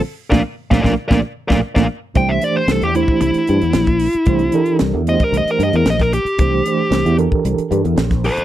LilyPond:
<<
  \new Staff \with { instrumentName = "Lead electric guitar" } { \time 4/4 \key bes \lydian \tempo 4 = 114 r8 <bes' d'' f''>16 r8 <bes' d'' f''>16 <bes' d'' f''>16 r16 <bes' d'' f''>16 r8 <bes' d'' f''>16 r16 <bes' d'' f''>16 r8 | \key c \mixolydian g''16 e''16 d''16 c''16 a'16 g'16 e'8 e'2~ | e'4 r8 ees''16 bes'16 ees''16 bes'16 ees''16 bes'16 ees''16 bes'16 g'8~ | g'4. r2 <a' c''>8 | }
  \new Staff \with { instrumentName = "Reed electric piano" } { \time 4/4 \key bes \lydian r8 <a bes d'>16 r8 <a bes d'>16 <a bes d'>16 r16 <a bes d'>16 r8 <a bes d'>16 r16 <a bes d'>16 r8 | \key c \mixolydian <e a d' g' c''>8 <e a d' g' c''>4 <e a d' g' c''>4.~ <e a d' g' c''>16 r8. | <e a d' g' c''>8 <e d' g' a' bes'>4 <e a d' g' c''>4.~ <e a d' g' c''>16 r8. | <e a d' g' c''>8 <e a d' g' c''>4 <e d' g' a' bes'>4.~ <e d' g' a' bes'>16 r8. | }
  \new Staff \with { instrumentName = "Fretless electric bass" } { \clef bass \time 4/4 \key bes \lydian r8 bes,,16 r8 bes,,16 bes,,16 r16 bes,,16 r8 bes,,16 r16 bes,,16 r8 | \key c \mixolydian c,8 r8 c,16 e,8 r16 c,16 r16 g,16 e,16 bes,,8. r16 | c,8 r8 c,16 e,8 r16 c,16 r16 g,16 e,16 bes,,8. r16 | c,8 r8 c,16 e,8 r16 c,16 r16 g,16 e,16 bes,,8. r16 | }
  \new DrumStaff \with { instrumentName = "Drums" } \drummode { \time 4/4 r8 <bd sn>8 r16 <bd sn>16 <bd sn>8 <bd sn>8. <bd sn>16 r16 <bd sn>8. | <hh bd>8 hh8 <hh sn>16 hh16 hh16 bd16 hh16 hh16 hh16 hh16 <hh sn>16 <hh bd>16 hho16 hh16 | <hh bd>16 hh16 hh16 hh16 <hh sn>8 hh16 <hh bd>16 hh16 hh16 hh16 hh16 <hh sn>16 <hh bd sn>16 hh16 hh16 | <hh bd>8 hh8 <hh sn>16 hh16 hh16 bd16 hh16 hh16 hh16 hh16 <hh sn>16 <hh bd sn>16 hho16 hh16 | }
>>